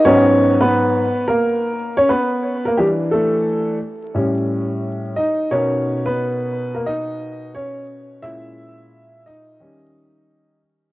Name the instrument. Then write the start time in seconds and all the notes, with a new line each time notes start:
upright piano
Already playing: D#5
0.05 G#2 F#3 B3 C#4 C#5
0.61 B3 B4
1.28 A#3 A#4
1.97 C#4 C#5
2.09 B3 B4
2.65 A#3 A#4
2.77 E3 G3 D4 G4
3.11 A3 A4
4.14 A2 G3 C#4
5.16 D#4 D#5
5.51 B2 C#4 D#4 A#4 C#5
6.06 B3 B4
6.74 A#3 A#4
6.86 D#4 D#5
7.55 C#4 C#5
8.22 A#2 G#3 C#4 E4 E5
9.26 D#4 D#5
9.60 D#3 G3 C#4